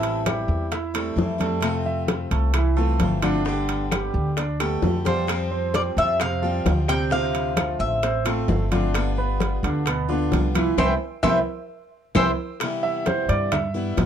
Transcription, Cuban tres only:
0, 0, Header, 1, 2, 480
1, 0, Start_track
1, 0, Key_signature, 0, "major"
1, 0, Tempo, 457317
1, 1715, Time_signature, 4, 2, 24, 8
1, 14755, End_track
2, 0, Start_track
2, 0, Title_t, "Cuban tres"
2, 0, Program_c, 0, 25
2, 0, Note_on_c, 0, 69, 74
2, 238, Note_off_c, 0, 69, 0
2, 5312, Note_on_c, 0, 72, 72
2, 6037, Note_on_c, 0, 74, 82
2, 6052, Note_off_c, 0, 72, 0
2, 6101, Note_off_c, 0, 74, 0
2, 6279, Note_on_c, 0, 76, 87
2, 6498, Note_off_c, 0, 76, 0
2, 6517, Note_on_c, 0, 77, 92
2, 7226, Note_off_c, 0, 77, 0
2, 7231, Note_on_c, 0, 79, 94
2, 7471, Note_off_c, 0, 79, 0
2, 7475, Note_on_c, 0, 77, 90
2, 8182, Note_off_c, 0, 77, 0
2, 8186, Note_on_c, 0, 76, 84
2, 9106, Note_off_c, 0, 76, 0
2, 11321, Note_on_c, 0, 72, 88
2, 11325, Note_on_c, 0, 76, 76
2, 11331, Note_on_c, 0, 79, 82
2, 11472, Note_off_c, 0, 76, 0
2, 11473, Note_off_c, 0, 72, 0
2, 11473, Note_off_c, 0, 79, 0
2, 11785, Note_on_c, 0, 76, 84
2, 11789, Note_on_c, 0, 79, 78
2, 11792, Note_on_c, 0, 72, 90
2, 11943, Note_off_c, 0, 76, 0
2, 11943, Note_off_c, 0, 79, 0
2, 11946, Note_off_c, 0, 72, 0
2, 12757, Note_on_c, 0, 72, 91
2, 12765, Note_on_c, 0, 76, 87
2, 12769, Note_on_c, 0, 79, 77
2, 12912, Note_off_c, 0, 72, 0
2, 12912, Note_off_c, 0, 76, 0
2, 12912, Note_off_c, 0, 79, 0
2, 14755, End_track
0, 0, End_of_file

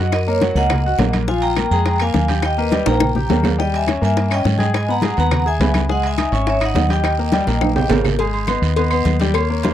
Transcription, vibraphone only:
0, 0, Header, 1, 2, 480
1, 0, Start_track
1, 0, Tempo, 287908
1, 218, Time_signature, 4, 2, 24, 8
1, 16235, End_track
2, 0, Start_track
2, 0, Title_t, "Vibraphone"
2, 0, Program_c, 0, 11
2, 0, Note_on_c, 0, 75, 69
2, 0, Note_on_c, 0, 78, 88
2, 172, Note_off_c, 0, 78, 0
2, 185, Note_off_c, 0, 75, 0
2, 220, Note_on_c, 0, 75, 99
2, 223, Note_on_c, 0, 70, 80
2, 328, Note_off_c, 0, 75, 0
2, 330, Note_off_c, 0, 70, 0
2, 468, Note_on_c, 0, 73, 97
2, 487, Note_on_c, 0, 70, 74
2, 911, Note_off_c, 0, 73, 0
2, 921, Note_off_c, 0, 70, 0
2, 938, Note_on_c, 0, 78, 104
2, 951, Note_on_c, 0, 75, 82
2, 1833, Note_off_c, 0, 78, 0
2, 1840, Note_off_c, 0, 75, 0
2, 2131, Note_on_c, 0, 80, 107
2, 2142, Note_on_c, 0, 77, 82
2, 2359, Note_off_c, 0, 80, 0
2, 2365, Note_off_c, 0, 77, 0
2, 2367, Note_on_c, 0, 82, 100
2, 2373, Note_on_c, 0, 79, 90
2, 2820, Note_off_c, 0, 82, 0
2, 2824, Note_off_c, 0, 79, 0
2, 2860, Note_on_c, 0, 82, 106
2, 2867, Note_on_c, 0, 79, 81
2, 3308, Note_off_c, 0, 82, 0
2, 3312, Note_off_c, 0, 79, 0
2, 3361, Note_on_c, 0, 80, 110
2, 3371, Note_on_c, 0, 77, 76
2, 4023, Note_off_c, 0, 80, 0
2, 4028, Note_off_c, 0, 77, 0
2, 4078, Note_on_c, 0, 79, 100
2, 4094, Note_on_c, 0, 75, 76
2, 4295, Note_off_c, 0, 75, 0
2, 4308, Note_on_c, 0, 71, 70
2, 4315, Note_on_c, 0, 75, 100
2, 4318, Note_off_c, 0, 79, 0
2, 4753, Note_off_c, 0, 71, 0
2, 4757, Note_off_c, 0, 75, 0
2, 4788, Note_on_c, 0, 82, 101
2, 4795, Note_on_c, 0, 79, 77
2, 5680, Note_off_c, 0, 82, 0
2, 5684, Note_off_c, 0, 79, 0
2, 6000, Note_on_c, 0, 75, 80
2, 6000, Note_on_c, 0, 79, 97
2, 6216, Note_off_c, 0, 75, 0
2, 6216, Note_off_c, 0, 79, 0
2, 6259, Note_on_c, 0, 80, 106
2, 6273, Note_on_c, 0, 76, 80
2, 6690, Note_off_c, 0, 80, 0
2, 6697, Note_off_c, 0, 76, 0
2, 6752, Note_on_c, 0, 76, 78
2, 6753, Note_on_c, 0, 80, 98
2, 7177, Note_off_c, 0, 76, 0
2, 7178, Note_off_c, 0, 80, 0
2, 7232, Note_on_c, 0, 79, 90
2, 7235, Note_on_c, 0, 75, 75
2, 7880, Note_off_c, 0, 79, 0
2, 7882, Note_off_c, 0, 75, 0
2, 7944, Note_on_c, 0, 75, 85
2, 7947, Note_on_c, 0, 80, 97
2, 8043, Note_off_c, 0, 75, 0
2, 8046, Note_off_c, 0, 80, 0
2, 8178, Note_on_c, 0, 82, 102
2, 8183, Note_on_c, 0, 78, 81
2, 8610, Note_off_c, 0, 82, 0
2, 8612, Note_off_c, 0, 78, 0
2, 8660, Note_on_c, 0, 78, 82
2, 8671, Note_on_c, 0, 82, 95
2, 9090, Note_off_c, 0, 78, 0
2, 9096, Note_off_c, 0, 82, 0
2, 9122, Note_on_c, 0, 76, 75
2, 9133, Note_on_c, 0, 80, 91
2, 9784, Note_off_c, 0, 76, 0
2, 9789, Note_off_c, 0, 80, 0
2, 9852, Note_on_c, 0, 75, 69
2, 9861, Note_on_c, 0, 78, 97
2, 10063, Note_off_c, 0, 75, 0
2, 10068, Note_off_c, 0, 78, 0
2, 10109, Note_on_c, 0, 76, 72
2, 10118, Note_on_c, 0, 80, 100
2, 10535, Note_off_c, 0, 76, 0
2, 10540, Note_off_c, 0, 80, 0
2, 10590, Note_on_c, 0, 76, 78
2, 10592, Note_on_c, 0, 80, 88
2, 10688, Note_off_c, 0, 76, 0
2, 10689, Note_off_c, 0, 80, 0
2, 10828, Note_on_c, 0, 73, 73
2, 10835, Note_on_c, 0, 76, 89
2, 10926, Note_off_c, 0, 73, 0
2, 10932, Note_off_c, 0, 76, 0
2, 11090, Note_on_c, 0, 78, 94
2, 11096, Note_on_c, 0, 75, 70
2, 11505, Note_off_c, 0, 78, 0
2, 11509, Note_off_c, 0, 75, 0
2, 11534, Note_on_c, 0, 75, 75
2, 11554, Note_on_c, 0, 79, 89
2, 13131, Note_off_c, 0, 75, 0
2, 13141, Note_off_c, 0, 79, 0
2, 16235, End_track
0, 0, End_of_file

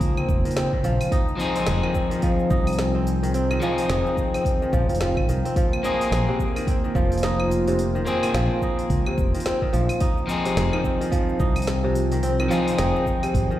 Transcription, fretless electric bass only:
0, 0, Header, 1, 2, 480
1, 0, Start_track
1, 0, Key_signature, -4, "minor"
1, 0, Tempo, 555556
1, 969, Time_signature, 4, 2, 24, 8
1, 11746, End_track
2, 0, Start_track
2, 0, Title_t, "Fretless electric bass"
2, 0, Program_c, 0, 35
2, 5, Note_on_c, 0, 37, 94
2, 125, Note_off_c, 0, 37, 0
2, 246, Note_on_c, 0, 29, 84
2, 365, Note_off_c, 0, 29, 0
2, 721, Note_on_c, 0, 34, 103
2, 842, Note_off_c, 0, 34, 0
2, 1449, Note_on_c, 0, 29, 99
2, 1566, Note_off_c, 0, 29, 0
2, 2165, Note_on_c, 0, 36, 99
2, 3100, Note_off_c, 0, 36, 0
2, 3366, Note_on_c, 0, 29, 96
2, 3485, Note_off_c, 0, 29, 0
2, 4088, Note_on_c, 0, 34, 85
2, 4229, Note_off_c, 0, 34, 0
2, 4229, Note_on_c, 0, 29, 78
2, 4565, Note_off_c, 0, 29, 0
2, 4565, Note_on_c, 0, 36, 101
2, 4685, Note_off_c, 0, 36, 0
2, 5285, Note_on_c, 0, 34, 96
2, 5404, Note_off_c, 0, 34, 0
2, 6007, Note_on_c, 0, 29, 99
2, 6941, Note_off_c, 0, 29, 0
2, 7207, Note_on_c, 0, 34, 91
2, 7326, Note_off_c, 0, 34, 0
2, 7689, Note_on_c, 0, 37, 87
2, 7806, Note_off_c, 0, 37, 0
2, 7931, Note_on_c, 0, 29, 84
2, 8047, Note_off_c, 0, 29, 0
2, 8413, Note_on_c, 0, 34, 99
2, 8528, Note_off_c, 0, 34, 0
2, 9131, Note_on_c, 0, 29, 92
2, 9247, Note_off_c, 0, 29, 0
2, 9847, Note_on_c, 0, 36, 101
2, 10781, Note_off_c, 0, 36, 0
2, 11051, Note_on_c, 0, 29, 100
2, 11167, Note_off_c, 0, 29, 0
2, 11527, Note_on_c, 0, 32, 88
2, 11645, Note_off_c, 0, 32, 0
2, 11746, End_track
0, 0, End_of_file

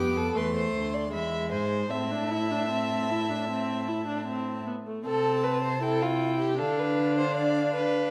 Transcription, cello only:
0, 0, Header, 1, 2, 480
1, 0, Start_track
1, 0, Key_signature, 0, "minor"
1, 0, Tempo, 781250
1, 1178, Time_signature, 4, 2, 24, 8
1, 3108, Tempo, 767263
1, 5014, End_track
2, 0, Start_track
2, 0, Title_t, "Cello"
2, 0, Program_c, 0, 42
2, 0, Note_on_c, 0, 41, 72
2, 222, Note_off_c, 0, 41, 0
2, 226, Note_on_c, 0, 40, 73
2, 456, Note_off_c, 0, 40, 0
2, 461, Note_on_c, 0, 38, 61
2, 697, Note_on_c, 0, 40, 60
2, 706, Note_off_c, 0, 38, 0
2, 935, Note_on_c, 0, 44, 62
2, 944, Note_off_c, 0, 40, 0
2, 1177, Note_off_c, 0, 44, 0
2, 1182, Note_on_c, 0, 45, 68
2, 2844, Note_off_c, 0, 45, 0
2, 3105, Note_on_c, 0, 48, 75
2, 4065, Note_on_c, 0, 50, 77
2, 4074, Note_off_c, 0, 48, 0
2, 5014, Note_off_c, 0, 50, 0
2, 5014, End_track
0, 0, End_of_file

